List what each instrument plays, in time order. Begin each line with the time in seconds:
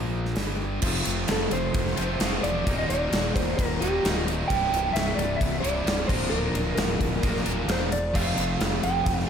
Already playing: fingered electric bass A#1, overdriven electric guitar A#2 F3 A#3
0.25 snare
0.36 fingered electric bass G1, overdriven electric guitar G2 D3 G3, snare, open hi-hat
0.81 fingered electric bass F1, overdriven electric guitar F2 C3 F3 A3 C4 F4, kick, crash
1.05 fingered electric bass F1, ride
1.28 fingered electric bass F1, electric slide guitar A4, snare, ride
1.51 fingered electric bass F1, electric slide guitar C5, ride
1.74 fingered electric bass F1, kick, ride
1.87 snare
1.96 fingered electric bass F1, overdriven electric guitar F2 C3 F3 A3 C4 F4, ride
2.20 fingered electric bass F1, overdriven electric guitar F2 C3 F3 A3 C4 F4, snare, ride
2.43 fingered electric bass E1, electric slide guitar D5, ride
2.66 fingered electric bass D#1, overdriven electric guitar D#2 A#2 D#3 G3 A#3 D#4, kick, ride
2.78 electric slide guitar D#5
2.90 fingered electric bass D#1, electric slide guitar D5, ride
3.12 fingered electric bass D#1, snare, ride
3.36 fingered electric bass D#1, electric slide guitar C5, kick, ride
3.57 fingered electric bass D#1, electric slide guitar A#4, kick, ride
3.80 fingered electric bass D#1, overdriven electric guitar D#2 A#2 D#3 G3 A#3 D#4, electric slide guitar G4, ride
4.03 fingered electric bass D1, overdriven electric guitar D#2 A#2 D#3 G3 A#3 D#4, snare, ride
4.28 ride
4.48 fingered electric bass C1, overdriven electric guitar C2 G2 C3 G3 E4, electric slide guitar G5, kick, ride
4.72 fingered electric bass C1, ride
4.93 fingered electric bass C1, electric slide guitar E5, snare, ride
5.15 fingered electric bass C1, electric slide guitar D5, ride
5.37 electric slide guitar E5
5.41 fingered electric bass C1, kick, ride
5.60 fingered electric bass C1, overdriven electric guitar C2 G2 C3 G3 E4, electric slide guitar D5, ride
5.84 fingered electric bass C1, overdriven electric guitar C2 G2 C3 G3 E4, snare, ride
6.07 fingered electric bass D1, overdriven electric guitar A#2 F3 A#3 D4 F4 A#4, electric slide guitar C5, kick, crash
6.30 fingered electric bass D1, electric slide guitar A#4
6.53 fingered electric bass D1, ride
6.75 fingered electric bass D1, electric slide guitar A#4, snare, ride
7.00 fingered electric bass D1, kick, ride
7.21 fingered electric bass D1, overdriven electric guitar A#2 F3 A#3 D4 F4 A#4, kick, ride
7.36 snare
7.45 fingered electric bass D1, overdriven electric guitar A#2 F3 A#3 D4 F4 A#4, ride
7.68 fingered electric bass E1, electric slide guitar C5, snare, ride
7.92 electric slide guitar D5, ride
8.14 fingered electric bass F1, overdriven electric guitar F2 C3 F3 A3 C4 F4, electric slide guitar F5, kick, crash
8.37 fingered electric bass F1, ride
8.61 fingered electric bass F1, snare, ride
8.83 fingered electric bass F1, electric slide guitar G5, ride
9.06 fingered electric bass F1, kick, ride
9.20 snare